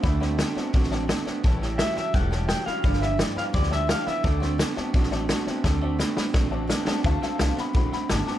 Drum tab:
HH |----p-------p---|----p-------p---|----p-------p---|----p-------p---|
SD |o-o-o-o-ooo-o-o-|o-o-o-o-o-o-o-o-|ooo-o-o-ooo-o-o-|o-o-o-o-ooo-o-o-|
BD |o-------o-------|o-------o-------|o-------o-------|o-------o-------|

HH |----p-------p---|----p-------p---|
SD |o---o-o-o---o-o-|o-o-o-o-o-o-o-o-|
BD |o-------o-------|o-------o-------|